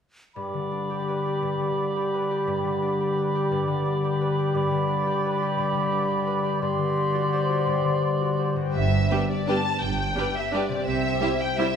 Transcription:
0.35 harp G2, clarinet G4, cor anglais D5, flute B5
0.54 harp D3
0.71 harp D4
0.90 harp G4
1.08 harp B4
1.26 harp G4
1.43 harp G2
1.59 harp D3
1.77 harp D4
1.96 harp G4
2.14 harp B4
2.31 harp G4
2.48 harp G2
2.64 harp D3
2.82 harp D4
3.00 harp G4
3.18 harp B4
3.35 harp G4
3.52 harp G2
3.68 harp D3
3.85 harp D4
4.04 harp G4
4.21 harp B4
4.38 harp G4
4.55 harp G2, clarinet G4, cor anglais D5, flute B5
4.71 harp D3
4.88 harp D4
5.06 harp G4
5.25 harp B4
5.42 harp G4
5.58 harp G2
5.75 harp D3
5.92 harp D4
6.10 harp G4
6.27 harp B4
6.45 harp G4
6.61 harp G2, clarinet G4, cor anglais D5, flute C6
6.78 harp D3
6.96 harp D4
7.14 harp F#4
7.32 harp C5
7.50 harp F#4
7.67 harp G2
7.84 harp D3
8.02 harp D4
8.21 harp F#4
8.39 harp C5
8.56 harp G2 F#4
8.61 harp D4
8.65 harp G4
8.70 harp B4
8.74 double bass section G1, cello section G2, violin section E5
9.11 viola section G3 D4, french horn section B3 G4, violin section G4 B4
9.30 violin section D5
9.47 viola section G3 D4, french horn section B3 G4, violin section G4 B4 A5
9.82 double bass section G1, cello section G2, violin section G5
10.16 viola section G3 D4, french horn section B3 G4, violin section G4 B4
10.36 violin section E5
10.52 viola section G3 D4, french horn section B3 G4, violin section G4 B4 D5
10.69 harp C3
10.73 harp C4
10.78 harp G4
10.83 harp C5, violin section E5
10.87 double bass section C2, cello section C3
11.21 viola section G3 E4, french horn section C4 G4, violin section G4 C5
11.41 violin section G5
11.56 viola section G3 E4, french horn section C4 G4, violin section G4 C5 E5

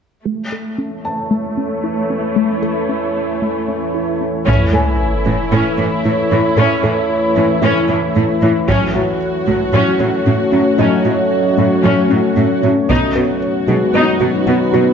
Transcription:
0.25 ambient pad E3 A3 E4 C#5, viola section A3, synth pluck A3
0.52 synth pluck A4
0.78 synth pluck C#4
1.05 felt piano A5
1.31 synth pluck A3
1.57 synth pluck C#4
1.84 synth pluck E4
2.10 synth pluck C#4
2.36 synth pluck A3
2.62 synth pluck A4
2.89 synth pluck C#4
3.42 synth pluck A3
3.68 synth pluck C#4
3.95 synth pluck E4
4.21 synth pluck C#4
4.46 cello section A2, ambient pad E3 A3 E4 C#5, synth pluck A3, viola section C#4 E4, taiko, sub drop
4.73 cello section A2, viola section E3, synth pluck A4, felt piano G#5
5.26 cello section A2, viola section E3, synth pluck C#4
5.52 cello section A2, synth pluck A3, viola section C#4
5.78 cello section A2, viola section E3, synth pluck E4
6.05 cello section A2, viola section A3, synth pluck E4
6.31 cello section A2, viola section E3, synth pluck E4
6.57 cello section A2, synth pluck A3, viola section C#4
6.83 cello section A2, viola section E3, synth pluck A4
7.36 cello section A2, viola section E3, synth pluck C#4
7.62 cello section A2, synth pluck A3, viola section C#4, felt piano E4 E5
7.89 cello section A2, viola section E3, synth pluck E4
8.16 cello section A2, viola section A3, synth pluck E4
8.42 cello section A2, viola section E3, synth pluck E4
8.68 cello section A2, synth pluck F#3, ambient pad F#3 A3 C#4 C#5, viola section C#4 F#4, taiko
8.95 cello section A2, viola section F#3, synth pluck F#4
9.47 cello section A2, viola section F#3, synth pluck A3, taiko
9.73 cello section A2, synth pluck F#3, viola section C#4
10.00 cello section A2, viola section F#3, synth pluck C#4
10.26 cello section A2, viola section A3, synth pluck C#4
10.52 cello section A2, viola section F#3, synth pluck C#4
10.78 cello section A2, synth pluck F#3, viola section C#4, felt piano D#4 D#5
11.05 cello section A2, viola section F#3, synth pluck F#4
11.58 cello section A2, viola section F#3, synth pluck A3
11.84 cello section A2, synth pluck F#3, viola section C#4, felt piano C#5
12.10 cello section A2, viola section F#3, synth pluck C#4
12.37 cello section A2, viola section A3, synth pluck C#4
12.63 cello section A2, viola section F#3, synth pluck C#4
12.89 cello section B2, ambient pad F#3 B3 D#4 B4, synth pluck B3, viola section D#4 F#4, taiko
13.15 cello section B2, viola section F#3, synth pluck B4
13.68 cello section B2, viola section F#3, felt piano G#3 G#4, synth pluck D#4
13.94 cello section B2, synth pluck B3, viola section D#4
14.21 cello section B2, viola section F#3, synth pluck F#4
14.47 cello section B2, viola section B3, synth pluck F#4
14.74 cello section B2, viola section F#3, synth pluck F#4, felt piano B4

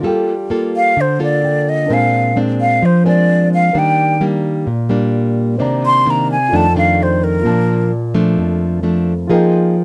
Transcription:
0.01 nylon-string guitar G3 A#3 F4 A4, grand piano F4 A4
0.07 grand piano G5
0.50 nylon-string guitar A#3 F4 A4
0.76 flute F5
0.97 nylon-string guitar D3, flute C5
1.19 nylon-string guitar A#3 F4 A4, flute D5
1.41 grand piano F4 A4 G5
1.69 flute D#5
1.86 nylon-string guitar A#2, grand piano D4 A#4
1.90 nylon-string guitar G#3 C4 D4, grand piano C5 G#5, flute F5
2.36 nylon-string guitar G#3 C4 D4
2.61 flute F5
2.82 nylon-string guitar F3, flute C5
3.03 nylon-string guitar G#3 C4 D4, grand piano D4 A#4 C5 G#5
3.07 flute D5
3.54 flute F5
3.73 nylon-string guitar D#3 G3 A#3 D4, grand piano A#4 D5
3.77 grand piano G5, flute G5
4.21 nylon-string guitar G3 A#3 D4
4.67 nylon-string guitar A#2
4.89 nylon-string guitar G3 A#3 D4
5.58 nylon-string guitar C3 D#3 A#3 D4, grand piano C5 D5
5.62 grand piano A#5
5.86 flute C6
6.06 nylon-string guitar D#3 A#3 D4
6.10 flute A#5
6.32 flute G#5
6.48 grand piano F4 A4 D5
6.53 nylon-string guitar F2 D#3 A3 D4, grand piano D#4 G5, flute A5
6.76 nylon-string guitar D#3 A3 D4, flute F5
7.03 flute C5
7.24 flute A#4
7.41 grand piano A#3 F4
7.45 nylon-string guitar A#2 F3 D4, grand piano D5 A5
8.14 nylon-string guitar F3 A3 D4
8.38 nylon-string guitar F2
8.83 nylon-string guitar F3 A3 D4
9.27 nylon-string guitar F3 A#3 D#4 G#4, grand piano F4 G#4 A#4
9.32 grand piano D#5 G5

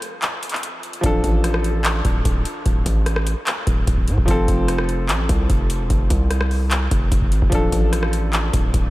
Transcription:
Already playing: grand piano F3 C4 A4
0.02 closed hi-hat
0.22 clap, closed hi-hat
0.43 closed hi-hat
0.49 clap, closed hi-hat
0.56 closed hi-hat
0.63 closed hi-hat
0.83 closed hi-hat
0.93 closed hi-hat
1.01 808-style bass D1, grand piano F3 D4, kick, closed hi-hat
1.06 grand piano A4
1.24 808-style bass A1, kick, closed hi-hat
1.44 cross-stick, closed hi-hat
1.54 cross-stick
1.64 closed hi-hat
1.84 clap, closed hi-hat
2.05 808-style bass D1, kick, closed hi-hat
2.25 808-style bass D1, kick, closed hi-hat
2.45 closed hi-hat
2.66 808-style bass D1, kick, closed hi-hat
2.86 808-style bass A1, kick, closed hi-hat
3.06 cross-stick, closed hi-hat
3.16 cross-stick
3.27 closed hi-hat
3.47 clap, closed hi-hat
3.67 808-style bass D1, kick, closed hi-hat
3.87 808-style bass D1, kick, closed hi-hat
3.97 kick
4.08 808-style bass A2, closed hi-hat
4.18 808-style bass D1, kick
4.26 808-style bass F1, grand piano F3 C4, kick, closed hi-hat
4.30 grand piano A4
4.48 808-style bass F1, kick, closed hi-hat
4.68 cross-stick, closed hi-hat
4.78 cross-stick
4.89 closed hi-hat
5.09 808-style bass A1, clap, closed hi-hat
5.29 808-style bass C2, kick, closed hi-hat
5.50 808-style bass F1, kick, closed hi-hat
5.70 closed hi-hat
5.80 808-style bass E1
5.90 808-style bass F1, kick, closed hi-hat
6.10 808-style bass C2, kick, closed hi-hat
6.30 cross-stick, closed hi-hat
6.41 cross-stick
6.51 open hi-hat
6.71 clap, closed hi-hat
6.91 808-style bass F1, kick, closed hi-hat
7.12 808-style bass F1, kick, closed hi-hat
7.22 kick
7.32 808-style bass A1, closed hi-hat
7.42 808-style bass F1, kick
7.50 808-style bass D1, grand piano F3 D4, kick, closed hi-hat
7.55 grand piano A4
7.72 808-style bass A1, kick, closed hi-hat
7.93 cross-stick, closed hi-hat
8.03 cross-stick
8.13 closed hi-hat
8.33 clap, closed hi-hat
8.53 808-style bass D1, kick, closed hi-hat
8.74 808-style bass D1, kick, closed hi-hat

